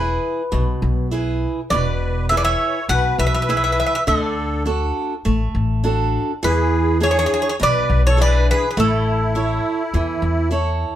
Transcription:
Already playing: upright bass E1, steel-string acoustic guitar E4 G#4 B4, bouzouki B4
0.52 upright bass B1, steel-string acoustic guitar B2
0.82 upright bass B1
1.11 steel-string acoustic guitar E4 G#4 B4
1.70 upright bass E1, steel-string acoustic guitar B2, accordion B4, bouzouki D5
2.29 steel-string acoustic guitar E4 G#4 B4, accordion B4, bouzouki E5
2.37 accordion B4, bouzouki D5
2.43 accordion C#5, bouzouki E5
2.88 upright bass B1, steel-string acoustic guitar B2, accordion B4, bouzouki F#5
3.18 upright bass B1, accordion B4, bouzouki E5
3.27 bouzouki E5
3.34 bouzouki E5
3.42 bouzouki E5
3.49 steel-string acoustic guitar E4 G#4 B4, bouzouki E5
3.57 bouzouki E5
3.64 bouzouki E5
3.72 bouzouki E5
3.80 bouzouki E5
3.86 bouzouki E5
3.95 bouzouki E5
4.07 upright bass D2, steel-string acoustic guitar D3, accordion A4, bouzouki D5
4.66 steel-string acoustic guitar D4 F#4 A4
5.25 upright bass A1, steel-string acoustic guitar A3
5.55 upright bass A1
5.84 steel-string acoustic guitar D4 F#4 A4
6.43 upright bass E2, steel-string acoustic guitar E3, accordion G#4, bouzouki B4
7.00 steel-string acoustic guitar D4 E4 G#4, accordion G#4, bouzouki C#5
7.11 bouzouki C#5
7.19 bouzouki C#5
7.26 bouzouki C#5
7.34 bouzouki C#5
7.42 bouzouki C#5
7.49 bouzouki C#5
7.60 upright bass B1, steel-string acoustic guitar B2, accordion B4, bouzouki D5
7.90 upright bass B1
8.07 accordion A4, bouzouki C#5
8.17 steel-string acoustic guitar D4 E4 G#4
8.22 accordion B4, bouzouki D5
8.51 accordion G#4, bouzouki B4
8.71 accordion G#4, bouzouki B4
8.77 upright bass A1, steel-string acoustic guitar A3, bouzouki A4
8.81 accordion E4
9.35 steel-string acoustic guitar E4 A4 C#5
9.94 upright bass E2, steel-string acoustic guitar E3
10.22 upright bass E2
10.51 steel-string acoustic guitar E4 A4 C#5

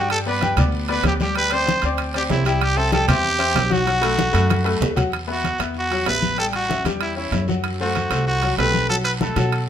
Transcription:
Already playing: upright bass G2, upright piano G3 G4 G5, trumpet F#4
0.10 trumpet A4, high conga, high timbale, long guiro
0.26 upright piano B3 B4 D5, trumpet B4, high conga
0.41 upright piano G3 G4 G5, high conga, high timbale, low timbale, short guiro
0.56 upright bass D2, upright piano B3 B4 D5, high conga, low conga, high timbale, short guiro
0.72 high conga, long guiro
0.88 upright piano B3 B4 D5, trumpet B4, high conga, high timbale
1.03 upright bass D2, trumpet G4, high conga, high timbale, low timbale, short guiro
1.20 upright piano G3 G4 G5, trumpet G4, high conga, short guiro
1.35 upright piano G3 G4 G5, trumpet B4, high conga, high timbale, long guiro
1.50 upright piano C4 C5 D5, trumpet C5, high conga, high timbale
1.66 high conga, low timbale, short guiro
1.82 upright bass D2, upright piano C4 C5 D5, high timbale, short guiro
1.97 high conga, high timbale, long guiro
2.14 upright piano C4 C5 D5, trumpet G4, high conga, high timbale
2.29 upright bass C2, trumpet E4, high conga, low timbale, short guiro
2.45 upright piano G3 G4 G5, trumpet E4, high timbale, short guiro
2.61 trumpet G4, high conga, high timbale, long guiro
2.77 upright piano C4 C5 E5, trumpet A4, high conga
2.91 upright piano G3 G4 G5, trumpet A4, high conga, high timbale, low timbale, short guiro
3.08 upright bass E2, upright piano C4 C5 E5, trumpet G4, high conga, low conga, high timbale, short guiro
3.24 high conga, long guiro
3.39 upright piano C4 C5 E5, high conga, high timbale
3.54 upright bass B1, high conga, high timbale, low timbale, short guiro
3.70 upright piano F#3 F#4 F#5, trumpet F#4, high conga, short guiro
3.86 upright piano F#3 F#4 F#5, high conga, high timbale, long guiro
4.01 upright piano A3 A4 B4, high conga, high timbale
4.18 high conga, low timbale, short guiro
4.33 upright bass F#2, upright piano A3 A4 B4, high timbale, short guiro
4.49 high conga, high timbale, long guiro
4.64 upright piano A3 A4 B4, high timbale
4.81 upright bass E2, low conga, low timbale, short guiro
4.96 upright piano F#3 F#4 F#5, low conga, high timbale, short guiro
5.12 high conga, high timbale, long guiro
5.27 upright piano B3 B4 E5, high conga
5.32 trumpet F#4
5.43 high conga, high timbale, low timbale, short guiro
5.58 upright bass E2, upright piano B3 B4 E5, high conga, high timbale, short guiro
5.74 high conga, long guiro
5.79 trumpet F#4
5.91 upright piano F#3 F#4 F#5, high conga, high timbale
6.06 upright bass A1, upright piano B3 B4 E5, trumpet B4, high conga, high timbale, low timbale, short guiro
6.22 high conga, short guiro
6.38 upright piano G3 G4 G5, trumpet A4, high conga, high timbale, long guiro
6.53 trumpet F#4, high conga, high timbale
6.69 upright piano C#4 C#5 E5, high conga, low timbale, short guiro
6.85 upright bass E2, upright piano G3 G4 G5, high conga, high timbale, short guiro
7.01 trumpet E4, high conga, high timbale, long guiro
7.16 upright piano C#4 C#5 E5, trumpet E4, high conga
7.32 upright bass F#2, high conga, high timbale, low timbale, short guiro
7.48 upright piano F#3 F#4 F#5, high conga, short guiro
7.64 high conga, high timbale, long guiro
7.80 upright piano A3 A4 C5, trumpet F#4, high conga
7.95 high conga, high timbale, low timbale, short guiro
8.10 upright bass C2, upright piano A3 A4 C5, high conga, high timbale, short guiro
8.27 trumpet F#4, high conga, long guiro
8.42 upright piano F#3 F#4 F#5, high conga, high timbale
8.58 upright bass B1, upright piano A3 C4 A4, trumpet B4, high conga, high timbale, low timbale, short guiro
8.74 high conga, short guiro
8.89 upright piano F#3 F#4 F#5, trumpet A4, high conga, high timbale, long guiro
9.04 trumpet B4, high conga, high timbale
9.21 upright piano A3 A4 B4, trumpet A4, high conga, low timbale, short guiro
9.36 upright bass B2, upright piano F#3 F#4 F#5, high conga, high timbale, short guiro
9.52 high conga, high timbale, long guiro

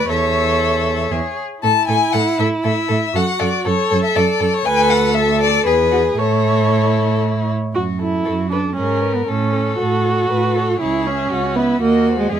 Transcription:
Already playing: violin B4
0.09 cello E2, violin A4 E5, viola C#5
1.11 cello E2, violin G#4
1.62 cello A2, viola E4, violin A4 A5
1.88 cello A2, violin A4 G#5
2.13 cello A2, violin A4 F#5
2.39 cello A2, violin A4 E5
2.64 cello A2, violin A4 E5
2.88 cello A2, violin A4
3.14 cello F#2, viola F#4, violin A4 F#5
3.39 cello F#2, violin A4 D5
3.65 cello F#2, violin A4 C#5, viola A4
3.90 cello F#2, violin A4
4.04 violin E5
4.15 cello F#2, violin A4 D5
4.40 cello F#2, violin A4
4.54 violin C#5
4.65 cello D2, violin A4 G#5, viola B4
4.90 violin F#5
5.14 viola A4, violin E5
5.41 violin D5
5.66 cello E2, violin G#4 B4, viola G#4
5.91 violin F#4
6.19 cello A2, violin E4 A4, viola C#5
7.74 cello F#2, violin F#4, viola F#4
7.99 viola E4, violin A4
8.25 cello F#2, violin F#4 A4
8.50 viola D4, violin A4 B4
8.75 cello G#2, viola C#4, violin G#4 A#4
9.01 violin B4
9.14 viola B3
9.26 cello A2, viola C#4, violin A4
9.53 violin C#5
9.78 cello A2, viola F#4, violin A4
10.05 violin C#5
10.30 cello A2, violin A4 B4
10.55 violin A4 C#5
10.79 cello C#2, viola E4, violin G#4
10.83 violin C#5
11.06 viola C#4, violin E5
11.31 cello C#2, violin F#4 C#5
11.55 viola B3, violin E4
11.59 violin E5
11.81 cello D#2, viola A#3, violin F#4 D#5
12.09 violin C5
12.19 viola G#3
12.29 cello E2, viola G#3, violin G#4
12.34 violin E5

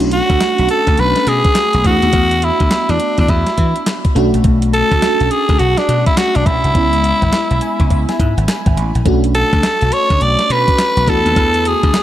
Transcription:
Already playing: slap bass B1, fm electric piano A3 C#4 D4 F#4
0.00 closed hi-hat
0.11 tenor saxophone F#4, closed hi-hat
0.30 slap bass D2, kick, closed hi-hat
0.41 snare, clap, closed hi-hat
0.58 slap bass B1, closed hi-hat
0.69 tenor saxophone A4, closed hi-hat
0.87 slap bass D2, kick, closed hi-hat
0.97 slap bass B1, tenor saxophone B4, closed hi-hat
1.16 snare, closed hi-hat
1.27 slap bass B2, tenor saxophone G#4, closed hi-hat
1.44 kick, closed hi-hat
1.55 snare, clap, closed hi-hat
1.73 slap bass B1, closed hi-hat
1.84 slap bass E2, fm electric piano A3 B3 D4 F#4, tenor saxophone F#4, kick, closed hi-hat
2.02 slap bass D#2, closed hi-hat
2.13 slap bass E2, kick, closed hi-hat
2.31 closed hi-hat
2.42 tenor saxophone E4, closed hi-hat
2.60 slap bass D2, kick, closed hi-hat
2.71 snare, clap, closed hi-hat
2.89 slap bass E2, tenor saxophone D4, closed hi-hat
3.00 closed hi-hat
3.18 slap bass E2, tenor saxophone D4, kick, closed hi-hat
3.28 slap bass E2, tenor saxophone E4, kick, closed hi-hat
3.47 snare, closed hi-hat
3.58 slap bass E3, kick, closed hi-hat
3.76 closed hi-hat
3.86 snare, clap, closed hi-hat
4.05 kick, closed hi-hat
4.15 slap bass B1, fm electric piano A3 C#4 D4 F#4, closed hi-hat
4.34 slap bass A#1, closed hi-hat
4.44 slap bass B1, kick, closed hi-hat
4.62 closed hi-hat
4.74 tenor saxophone A4, closed hi-hat
4.91 slap bass D2, kick, closed hi-hat
5.02 snare, clap, closed hi-hat
5.20 slap bass B1, closed hi-hat
5.31 tenor saxophone G#4, closed hi-hat
5.49 slap bass D2, kick, closed hi-hat
5.59 slap bass B1, tenor saxophone F#4, closed hi-hat
5.77 tenor saxophone D4, snare, closed hi-hat
5.89 slap bass B2, closed hi-hat
6.06 tenor saxophone E4, kick, closed hi-hat
6.17 tenor saxophone F#4, snare, clap, closed hi-hat
6.35 slap bass B1, tenor saxophone D4, closed hi-hat
6.46 slap bass B1, tenor saxophone E4, kick, closed hi-hat
6.64 slap bass C2, closed hi-hat
6.74 slap bass C#2, fm electric piano G#3 B3 C#4 E4, kick, closed hi-hat
6.93 closed hi-hat
7.04 closed hi-hat
7.22 slap bass G#1, kick, closed hi-hat
7.33 snare, clap, closed hi-hat
7.51 slap bass B1, closed hi-hat
7.61 fm electric piano G#5, closed hi-hat
7.80 slap bass C#2, kick, closed hi-hat
7.90 slap bass C#2, fm electric piano E5, kick, closed hi-hat
8.09 fm electric piano G#5, snare, closed hi-hat
8.20 slap bass G#2, fm electric piano B5, kick, closed hi-hat
8.37 slap bass G#1, closed hi-hat
8.48 fm electric piano G#5, snare, clap, closed hi-hat
8.66 slap bass G#1, kick, closed hi-hat
8.77 slap bass A1, closed hi-hat
8.95 slap bass A#1, closed hi-hat
9.05 slap bass B1, fm electric piano A3 C#4 D4 F#4, kick, closed hi-hat
9.24 closed hi-hat
9.35 tenor saxophone A4, closed hi-hat
9.53 slap bass D2, kick, closed hi-hat
9.63 snare, clap, closed hi-hat
9.81 slap bass B1, closed hi-hat
9.92 tenor saxophone C#5, closed hi-hat
10.10 slap bass D2, kick, closed hi-hat
10.21 slap bass B1, tenor saxophone D5, closed hi-hat
10.39 snare, closed hi-hat
10.50 slap bass B2, tenor saxophone B4, closed hi-hat
10.68 kick, closed hi-hat
10.78 snare, clap, closed hi-hat
10.97 slap bass B1, closed hi-hat
11.07 slap bass E2, fm electric piano A3 B3 D4 F#4, tenor saxophone A4, kick, closed hi-hat
11.26 slap bass D#2, closed hi-hat
11.36 slap bass E2, kick, closed hi-hat
11.54 closed hi-hat
11.65 tenor saxophone G#4, closed hi-hat
11.83 slap bass D2, kick, closed hi-hat
11.94 snare, clap, closed hi-hat

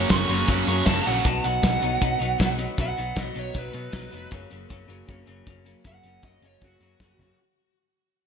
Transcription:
Already playing: clean electric guitar F#3 A#3 C#4
0.10 picked electric bass F#1, clean electric guitar F#2 C#3 F#3 A#3 C#4, distorted electric guitar F#4, lead electric guitar C#6, kick, snare, closed hi-hat
0.29 picked electric bass F#1, clean electric guitar F#2 C#3 F#3 A#3 C#4, distorted electric guitar F#4, closed hi-hat
0.48 picked electric bass F#1, clean electric guitar F#2 C#3 F#3 A#3 C#4, distorted electric guitar F#4, kick, closed hi-hat
0.67 picked electric bass F#2, clean electric guitar F#2 C#3 F#3 A#3 C#4, distorted electric guitar F#4, lead electric guitar C#6, closed hi-hat
0.86 picked electric bass F#1, clean electric guitar F#2 C#3 F#3 A#3 C#4, distorted electric guitar F#4, lead electric guitar A5, kick, snare, closed hi-hat
1.05 picked electric bass A#1, clean electric guitar F#2 C#3 F#3 A#3 C#4, distorted electric guitar F#4, lead electric guitar F#5, snare, closed hi-hat
1.24 picked electric bass B1, clean electric guitar B2 F#3 B3 D#4, lead electric guitar A5, kick, closed hi-hat
1.43 picked electric bass B1, clean electric guitar B2 F#3 B3 D#4, lead electric guitar F#5, closed hi-hat
1.62 picked electric bass B1, clean electric guitar B2 F#3 B3 D#4, kick, snare, closed hi-hat
1.80 picked electric bass B1, clean electric guitar B2 F#3 B3 D#4, closed hi-hat
2.00 picked electric bass B1, clean electric guitar B2 F#3 B3 D#4, kick, closed hi-hat
2.19 picked electric bass B1, clean electric guitar B2 F#3 B3 D#4, closed hi-hat
2.39 picked electric bass B1, clean electric guitar B2 F#3 B3 D#4, kick, snare, closed hi-hat
2.57 clean electric guitar B2 F#3 B3 D#4, closed hi-hat
2.77 picked electric bass B1, clean electric guitar B2 F#3 B3 D#4, lead electric guitar F#5, kick, closed hi-hat
2.97 picked electric bass B1, clean electric guitar B2 F#3 B3 D#4, closed hi-hat
3.15 picked electric bass B1, clean electric guitar B2 F#3 B3 D#4, lead electric guitar D#5, kick, snare, closed hi-hat
3.34 picked electric bass B1, clean electric guitar B2 F#3 B3 D#4, closed hi-hat
3.39 lead electric guitar C#5
3.54 picked electric bass B1, clean electric guitar B2 F#3 B3 D#4, kick, closed hi-hat
3.59 lead electric guitar B4
3.72 clean electric guitar B2 F#3 B3 D#4, picked electric bass B2, closed hi-hat
3.91 picked electric bass B1, clean electric guitar B2 F#3 B3 D#4, kick, snare, closed hi-hat
4.10 picked electric bass F1, clean electric guitar B2 F#3 B3 D#4, closed hi-hat
4.30 picked electric bass F#1, clean electric guitar F#2 C#3 F#3 A#3 C#4, kick, closed hi-hat
4.49 picked electric bass F#1, clean electric guitar F#2 C#3 F#3 A#3 C#4, closed hi-hat
4.68 picked electric bass F#1, clean electric guitar F#2 C#3 F#3 A#3 C#4, kick, closed hi-hat
4.87 picked electric bass F#1, clean electric guitar F#2 C#3 F#3 A#3 C#4, closed hi-hat
5.06 picked electric bass F#1, clean electric guitar F#2 C#3 F#3 A#3 C#4, kick, closed hi-hat
5.25 picked electric bass F#1, clean electric guitar F#2 C#3 F#3 A#3 C#4, closed hi-hat
5.45 picked electric bass F#1, clean electric guitar F#2 C#3 F#3 A#3 C#4, kick, closed hi-hat
5.64 clean electric guitar F#2 C#3 F#3 A#3 C#4, closed hi-hat
5.84 picked electric bass F#1, clean electric guitar F#2 C#3 F#3 A#3 C#4, lead electric guitar F#5, kick, closed hi-hat
6.03 picked electric bass F#1, clean electric guitar F#2 C#3 F#3 A#3 C#4, closed hi-hat
6.23 picked electric bass F#1, clean electric guitar F#2 C#3 F#3 A#3 C#4, lead electric guitar D#5, kick, closed hi-hat
6.42 picked electric bass F#1, clean electric guitar F#2 C#3 F#3 A#3 C#4, lead electric guitar C#5, closed hi-hat
6.61 picked electric bass F#1, clean electric guitar F#2 C#3 F#3 A#3, lead electric guitar F#4, kick, closed hi-hat
6.66 clean electric guitar C#4
6.80 clean electric guitar F#2 C#3 F#3 A#3 C#4, picked electric bass F#2, closed hi-hat
7.00 picked electric bass F#1, clean electric guitar F#2 C#3 F#3 A#3 C#4, kick, snare
7.17 picked electric bass F#1, clean electric guitar F#2 C#3 F#3 A#3, floor tom
7.21 clean electric guitar C#4

